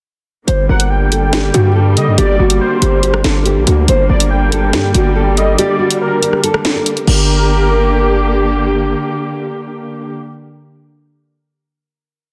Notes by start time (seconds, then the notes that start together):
0.47 G1 D3 G3 A#3 C5, closed hi-hat
0.69 G1 A#4 F#5
0.80 closed hi-hat
0.90 G5
1.12 A4, closed hi-hat
1.33 G4, snare, closed hi-hat
1.54 G2 F#4, closed hi-hat
1.75 A4
1.97 D3 D#5, closed hi-hat
2.07 G2
2.18 G1 G4 D5, closed hi-hat
2.39 G1 F#4
2.50 closed hi-hat
2.61 C5
2.82 G1 G4, closed hi-hat
3.03 G4, closed hi-hat
3.14 cross-stick
3.24 G1 A4, snare, closed hi-hat
3.45 G4, closed hi-hat
3.56 A#1
3.67 D2 F#4, closed hi-hat
3.88 G1 G3 C5, closed hi-hat
4.09 G1 A#4 D5
4.20 closed hi-hat
4.31 G5
4.52 A4, closed hi-hat
4.73 G2 G4, snare, closed hi-hat
4.95 G1 F#4, closed hi-hat
5.16 A4
5.37 D#5, closed hi-hat
5.58 G4 D5, closed hi-hat
5.79 F#4
5.91 closed hi-hat
6.01 A#4
6.22 G4, closed hi-hat
6.33 cross-stick
6.44 A4, closed hi-hat
6.54 cross-stick
6.65 snare, closed hi-hat
6.76 A#4
6.86 closed hi-hat
6.97 closed hi-hat
7.07 G1 D3 A#3 G4 A#4, crash